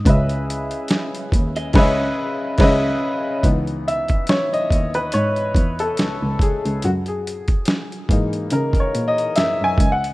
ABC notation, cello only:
X:1
M:4/4
L:1/16
Q:"Swing 16ths" 1/4=71
K:C#m
V:1 name="Cello" clef=bass
C,,3 z3 D,,2 C,,2 z2 C,,2 z2 | C,,3 z3 D,,2 G,,2 E,, z C,, C,, z C,, | F,,3 z3 G,,2 C,2 ^A,, z F,, F,, C,,2 |]